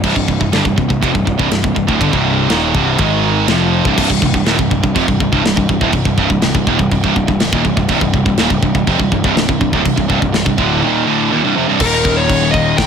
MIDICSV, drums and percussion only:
0, 0, Header, 1, 2, 480
1, 0, Start_track
1, 0, Key_signature, -3, "minor"
1, 0, Tempo, 489796
1, 41, Time_signature, 4, 2, 24, 8
1, 12610, End_track
2, 0, Start_track
2, 0, Title_t, "Drums"
2, 34, Note_on_c, 9, 49, 95
2, 37, Note_on_c, 9, 36, 96
2, 132, Note_off_c, 9, 49, 0
2, 135, Note_off_c, 9, 36, 0
2, 157, Note_on_c, 9, 36, 84
2, 255, Note_off_c, 9, 36, 0
2, 278, Note_on_c, 9, 36, 86
2, 376, Note_off_c, 9, 36, 0
2, 399, Note_on_c, 9, 36, 76
2, 497, Note_off_c, 9, 36, 0
2, 519, Note_on_c, 9, 53, 67
2, 523, Note_on_c, 9, 38, 111
2, 617, Note_off_c, 9, 53, 0
2, 621, Note_off_c, 9, 38, 0
2, 639, Note_on_c, 9, 36, 91
2, 737, Note_off_c, 9, 36, 0
2, 762, Note_on_c, 9, 36, 84
2, 860, Note_off_c, 9, 36, 0
2, 883, Note_on_c, 9, 36, 84
2, 981, Note_off_c, 9, 36, 0
2, 1005, Note_on_c, 9, 36, 93
2, 1012, Note_on_c, 9, 53, 70
2, 1103, Note_off_c, 9, 36, 0
2, 1110, Note_off_c, 9, 53, 0
2, 1126, Note_on_c, 9, 36, 82
2, 1224, Note_off_c, 9, 36, 0
2, 1246, Note_on_c, 9, 36, 80
2, 1344, Note_off_c, 9, 36, 0
2, 1366, Note_on_c, 9, 36, 89
2, 1464, Note_off_c, 9, 36, 0
2, 1484, Note_on_c, 9, 53, 65
2, 1488, Note_on_c, 9, 38, 115
2, 1582, Note_off_c, 9, 53, 0
2, 1586, Note_off_c, 9, 38, 0
2, 1607, Note_on_c, 9, 36, 89
2, 1705, Note_off_c, 9, 36, 0
2, 1727, Note_on_c, 9, 36, 81
2, 1825, Note_off_c, 9, 36, 0
2, 1848, Note_on_c, 9, 36, 83
2, 1946, Note_off_c, 9, 36, 0
2, 1968, Note_on_c, 9, 36, 99
2, 1972, Note_on_c, 9, 53, 67
2, 2066, Note_off_c, 9, 36, 0
2, 2070, Note_off_c, 9, 53, 0
2, 2089, Note_on_c, 9, 36, 86
2, 2187, Note_off_c, 9, 36, 0
2, 2448, Note_on_c, 9, 53, 67
2, 2452, Note_on_c, 9, 38, 108
2, 2546, Note_off_c, 9, 53, 0
2, 2550, Note_off_c, 9, 38, 0
2, 2691, Note_on_c, 9, 36, 105
2, 2789, Note_off_c, 9, 36, 0
2, 2924, Note_on_c, 9, 53, 65
2, 2930, Note_on_c, 9, 36, 101
2, 3022, Note_off_c, 9, 53, 0
2, 3028, Note_off_c, 9, 36, 0
2, 3410, Note_on_c, 9, 53, 74
2, 3414, Note_on_c, 9, 38, 112
2, 3508, Note_off_c, 9, 53, 0
2, 3512, Note_off_c, 9, 38, 0
2, 3775, Note_on_c, 9, 36, 102
2, 3873, Note_off_c, 9, 36, 0
2, 3898, Note_on_c, 9, 36, 116
2, 3900, Note_on_c, 9, 49, 126
2, 3900, Note_on_c, 9, 57, 66
2, 3996, Note_off_c, 9, 36, 0
2, 3998, Note_off_c, 9, 49, 0
2, 3998, Note_off_c, 9, 57, 0
2, 4017, Note_on_c, 9, 36, 86
2, 4115, Note_off_c, 9, 36, 0
2, 4136, Note_on_c, 9, 36, 85
2, 4234, Note_off_c, 9, 36, 0
2, 4254, Note_on_c, 9, 36, 85
2, 4352, Note_off_c, 9, 36, 0
2, 4372, Note_on_c, 9, 57, 63
2, 4376, Note_on_c, 9, 38, 109
2, 4470, Note_off_c, 9, 57, 0
2, 4474, Note_off_c, 9, 38, 0
2, 4497, Note_on_c, 9, 36, 99
2, 4595, Note_off_c, 9, 36, 0
2, 4618, Note_on_c, 9, 36, 86
2, 4716, Note_off_c, 9, 36, 0
2, 4739, Note_on_c, 9, 36, 92
2, 4837, Note_off_c, 9, 36, 0
2, 4859, Note_on_c, 9, 36, 97
2, 4863, Note_on_c, 9, 57, 61
2, 4957, Note_off_c, 9, 36, 0
2, 4961, Note_off_c, 9, 57, 0
2, 4980, Note_on_c, 9, 36, 86
2, 5078, Note_off_c, 9, 36, 0
2, 5100, Note_on_c, 9, 36, 87
2, 5198, Note_off_c, 9, 36, 0
2, 5219, Note_on_c, 9, 36, 89
2, 5317, Note_off_c, 9, 36, 0
2, 5344, Note_on_c, 9, 57, 62
2, 5348, Note_on_c, 9, 38, 113
2, 5442, Note_off_c, 9, 57, 0
2, 5446, Note_off_c, 9, 38, 0
2, 5460, Note_on_c, 9, 36, 92
2, 5558, Note_off_c, 9, 36, 0
2, 5577, Note_on_c, 9, 36, 86
2, 5675, Note_off_c, 9, 36, 0
2, 5695, Note_on_c, 9, 36, 85
2, 5793, Note_off_c, 9, 36, 0
2, 5806, Note_on_c, 9, 57, 65
2, 5813, Note_on_c, 9, 36, 93
2, 5904, Note_off_c, 9, 57, 0
2, 5911, Note_off_c, 9, 36, 0
2, 5932, Note_on_c, 9, 36, 94
2, 6030, Note_off_c, 9, 36, 0
2, 6053, Note_on_c, 9, 36, 85
2, 6151, Note_off_c, 9, 36, 0
2, 6174, Note_on_c, 9, 36, 85
2, 6272, Note_off_c, 9, 36, 0
2, 6291, Note_on_c, 9, 57, 65
2, 6295, Note_on_c, 9, 38, 116
2, 6389, Note_off_c, 9, 57, 0
2, 6393, Note_off_c, 9, 38, 0
2, 6415, Note_on_c, 9, 36, 95
2, 6513, Note_off_c, 9, 36, 0
2, 6536, Note_on_c, 9, 36, 89
2, 6634, Note_off_c, 9, 36, 0
2, 6656, Note_on_c, 9, 36, 91
2, 6754, Note_off_c, 9, 36, 0
2, 6776, Note_on_c, 9, 57, 61
2, 6777, Note_on_c, 9, 36, 90
2, 6874, Note_off_c, 9, 57, 0
2, 6875, Note_off_c, 9, 36, 0
2, 6897, Note_on_c, 9, 36, 80
2, 6995, Note_off_c, 9, 36, 0
2, 7018, Note_on_c, 9, 36, 84
2, 7116, Note_off_c, 9, 36, 0
2, 7137, Note_on_c, 9, 36, 85
2, 7235, Note_off_c, 9, 36, 0
2, 7253, Note_on_c, 9, 57, 70
2, 7257, Note_on_c, 9, 38, 115
2, 7351, Note_off_c, 9, 57, 0
2, 7355, Note_off_c, 9, 38, 0
2, 7376, Note_on_c, 9, 36, 111
2, 7474, Note_off_c, 9, 36, 0
2, 7495, Note_on_c, 9, 36, 88
2, 7593, Note_off_c, 9, 36, 0
2, 7615, Note_on_c, 9, 36, 88
2, 7713, Note_off_c, 9, 36, 0
2, 7727, Note_on_c, 9, 57, 67
2, 7732, Note_on_c, 9, 36, 100
2, 7825, Note_off_c, 9, 57, 0
2, 7830, Note_off_c, 9, 36, 0
2, 7853, Note_on_c, 9, 36, 86
2, 7951, Note_off_c, 9, 36, 0
2, 7974, Note_on_c, 9, 36, 85
2, 8072, Note_off_c, 9, 36, 0
2, 8094, Note_on_c, 9, 36, 87
2, 8192, Note_off_c, 9, 36, 0
2, 8207, Note_on_c, 9, 57, 66
2, 8211, Note_on_c, 9, 38, 114
2, 8305, Note_off_c, 9, 57, 0
2, 8309, Note_off_c, 9, 38, 0
2, 8333, Note_on_c, 9, 36, 93
2, 8431, Note_off_c, 9, 36, 0
2, 8453, Note_on_c, 9, 36, 84
2, 8551, Note_off_c, 9, 36, 0
2, 8574, Note_on_c, 9, 36, 93
2, 8672, Note_off_c, 9, 36, 0
2, 8693, Note_on_c, 9, 57, 66
2, 8696, Note_on_c, 9, 36, 94
2, 8791, Note_off_c, 9, 57, 0
2, 8794, Note_off_c, 9, 36, 0
2, 8815, Note_on_c, 9, 36, 79
2, 8913, Note_off_c, 9, 36, 0
2, 8937, Note_on_c, 9, 36, 85
2, 9035, Note_off_c, 9, 36, 0
2, 9057, Note_on_c, 9, 36, 90
2, 9155, Note_off_c, 9, 36, 0
2, 9180, Note_on_c, 9, 57, 61
2, 9184, Note_on_c, 9, 38, 117
2, 9278, Note_off_c, 9, 57, 0
2, 9282, Note_off_c, 9, 38, 0
2, 9298, Note_on_c, 9, 36, 97
2, 9396, Note_off_c, 9, 36, 0
2, 9417, Note_on_c, 9, 36, 93
2, 9515, Note_off_c, 9, 36, 0
2, 9536, Note_on_c, 9, 36, 83
2, 9634, Note_off_c, 9, 36, 0
2, 9658, Note_on_c, 9, 36, 94
2, 9663, Note_on_c, 9, 57, 62
2, 9756, Note_off_c, 9, 36, 0
2, 9761, Note_off_c, 9, 57, 0
2, 9776, Note_on_c, 9, 36, 86
2, 9874, Note_off_c, 9, 36, 0
2, 9896, Note_on_c, 9, 36, 88
2, 9994, Note_off_c, 9, 36, 0
2, 10016, Note_on_c, 9, 36, 83
2, 10114, Note_off_c, 9, 36, 0
2, 10132, Note_on_c, 9, 57, 61
2, 10136, Note_on_c, 9, 38, 117
2, 10230, Note_off_c, 9, 57, 0
2, 10234, Note_off_c, 9, 38, 0
2, 10251, Note_on_c, 9, 36, 96
2, 10349, Note_off_c, 9, 36, 0
2, 10369, Note_on_c, 9, 36, 86
2, 10467, Note_off_c, 9, 36, 0
2, 11563, Note_on_c, 9, 49, 120
2, 11563, Note_on_c, 9, 57, 93
2, 11569, Note_on_c, 9, 36, 92
2, 11661, Note_off_c, 9, 49, 0
2, 11661, Note_off_c, 9, 57, 0
2, 11667, Note_off_c, 9, 36, 0
2, 11807, Note_on_c, 9, 57, 71
2, 11809, Note_on_c, 9, 36, 85
2, 11905, Note_off_c, 9, 57, 0
2, 11907, Note_off_c, 9, 36, 0
2, 12049, Note_on_c, 9, 36, 89
2, 12051, Note_on_c, 9, 57, 89
2, 12147, Note_off_c, 9, 36, 0
2, 12149, Note_off_c, 9, 57, 0
2, 12288, Note_on_c, 9, 36, 84
2, 12288, Note_on_c, 9, 57, 62
2, 12386, Note_off_c, 9, 36, 0
2, 12386, Note_off_c, 9, 57, 0
2, 12524, Note_on_c, 9, 57, 84
2, 12527, Note_on_c, 9, 36, 85
2, 12528, Note_on_c, 9, 38, 110
2, 12610, Note_off_c, 9, 36, 0
2, 12610, Note_off_c, 9, 38, 0
2, 12610, Note_off_c, 9, 57, 0
2, 12610, End_track
0, 0, End_of_file